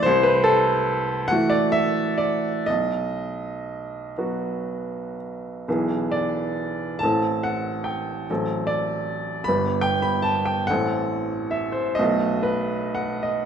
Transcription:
<<
  \new Staff \with { instrumentName = "Grand piano" } { \time 6/8 \key b \phrygian \tempo 4. = 46 c''16 b'16 a'4 fis''16 d''16 e''8 d''8 | dis''2~ dis''8 r8 | r8 d''4 a''8 fis''8 g''8 | r8 d''4 b''8 g''16 b''16 a''16 g''16 |
fis''4 e''16 c''16 dis''8 b'8 fis''16 dis''16 | }
  \new Staff \with { instrumentName = "Grand piano" } { \time 6/8 \key b \phrygian c,4. <e a fis'>4. | b,,4. <fis b fis'>4. | <b,, e b gis'>4. <a,, e c' a'>4. | <a,, fis c' a'>4. <g,, g b b'>4. |
<a,, e c' a'>4. <b,, a b fis'>4. | }
>>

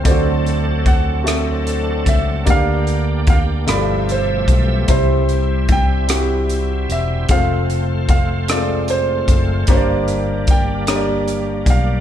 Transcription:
<<
  \new Staff \with { instrumentName = "Grand piano" } { \time 6/8 \key g \dorian \tempo 4. = 50 c''4 fis''4. e''8 | f''4 f''8 d''8 c''4 | c''4 g''4. e''8 | f''4 f''8 d''8 c''4 |
c''4 g''4. f''8 | }
  \new Staff \with { instrumentName = "Grand piano" } { \time 6/8 \key g \dorian <c' f' fis' a' d''>4~ <c' f' fis' a' d''>16 r16 <c' fis' a' e''>4~ <c' fis' a' e''>16 r16 | <bes d' g' d''>4~ <bes d' g' d''>16 r16 <a e' f' b''>4~ <a e' f' b''>16 r16 | <g c' e' c''>4~ <g c' e' c''>16 r16 <g c' e' ges' g'>4~ <g c' e' ges' g'>16 r16 | <aes a c' f' c''>4~ <aes a c' f' c''>16 r16 <aes a c' f' d''>4~ <aes a c' f' d''>16 r16 |
<bes d' g' des'' d''>4~ <bes d' g' des'' d''>16 r16 <bes d' g' des'' d''>4~ <bes d' g' des'' d''>16 r16 | }
  \new Staff \with { instrumentName = "Grand piano" } { \clef bass \time 6/8 \key g \dorian d4. r4. | d4. g,4. | c4. r4. | r2. |
g,4. r4. | }
  \new Staff \with { instrumentName = "Tonewheel organ" } { \time 6/8 \key g \dorian d'2.~ | d'4. e''4. | c'2.~ | c'2. |
bes2. | }
  \new Staff \with { instrumentName = "Tonewheel organ" } { \time 6/8 \key g \dorian <fis a c' a'>2. | <bes g'>4. <b, f a g'>4. | e'2. | <a f'>2. |
<g d'>2. | }
  \new Staff \with { instrumentName = "Fingered electric bass" } { \clef bass \time 6/8 \key g \dorian d,2~ d,8 des,8 | d,4. g,,4 b,,8 | c,2~ c,8 e,,8 | f,,2~ f,,8 ges,,8 |
g,,2~ g,,8 b,,8 | }
  \new DrumStaff \with { instrumentName = "Drums" } \drummode { \time 6/8 <hh bd>8 hh8 <hh bd>8 <hh ss>8 hh8 <hh bd>8 | <hh bd>8 hh8 <hh bd>8 <hh ss>8 hh8 <hh bd>8 | <hh bd>8 hh8 <hh bd>8 <hh ss>8 hh8 hh8 | <hh bd>8 hh8 <hh bd>8 <hh ss>8 hh8 <hh bd>8 |
<hh bd>8 hh8 <hh bd>8 <hh ss>8 hh8 <hh bd>8 | }
>>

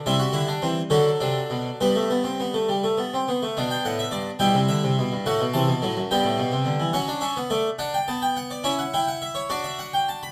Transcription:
<<
  \new Staff \with { instrumentName = "Harpsichord" } { \time 6/8 \key g \major \tempo 4. = 70 << { e''4. a'4. | b'2~ b'8 r8 | r16 g''16 fis''16 e''16 d''8 g''8 e''4 | fis''8 a''4 g''4. |
fis''8 e''8 d''8 fis''16 g''16 a''16 g''16 fis''16 d''16 | e''16 fis''16 g''16 fis''16 e''16 cis''16 d''16 e''16 fis''16 g''16 a''16 b''16 | } \\ { e'16 fis'16 e'16 d'16 c'8 fis'8 d'4 | b2~ b8 r8 | d'4. e'4. | fis'4. b4. |
cis'4. d'4. | e'4. fis'4. | } >> }
  \new Staff \with { instrumentName = "Harpsichord" } { \clef bass \time 6/8 \key g \major << { g4. fis4. | g16 a16 b16 c'16 b16 a16 g16 a16 b16 c'16 b16 a16 | b4. g4. | a8 e8 fis8 g4. |
fis16 d'16 cis'16 b16 a8 r8 b4 | cis'8 e'4 d'4. | } \\ { c8 d8 e8 d8 c8 b,8 | g,2~ g,8 r8 | b,8 a,8 g,8 b,16 c16 d16 c16 b,16 g,16 | a,16 b,16 c16 b,16 a,16 fis,16 g,16 a,16 b,16 c16 d16 e16 |
r2. | r2. | } >> }
>>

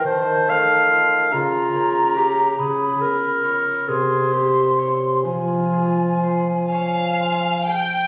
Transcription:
<<
  \new Staff \with { instrumentName = "Flute" } { \time 6/8 \key f \minor \tempo 4. = 45 a''4. bes''4. | ces'''4 r8 c'''4. | aes''2~ aes''8 r8 | }
  \new Staff \with { instrumentName = "Violin section" } { \time 6/8 \key f \minor r2. | r2. | r4. f''4 g''8 | }
  \new Staff \with { instrumentName = "Clarinet" } { \time 6/8 \key f \minor c''8 f''4 f'4 g'8 | aes'8 bes'4 aes'8 g'8 r8 | f'4. r4. | }
  \new Staff \with { instrumentName = "Harp" } { \time 6/8 \key f \minor <ees c''>8 a8 <f' c''>8 des8 bes8 <f' des''>8 | des8 ces'8 <f' des''>8 c8 bes8 <e' des''>8 | f8 aes'8 c''8 des''8 c''8 aes'8 | }
  \new Staff \with { instrumentName = "Bassoon" } { \clef bass \time 6/8 \key f \minor ees4. des4.~ | des4 r8 c4. | f2~ f8 r8 | }
>>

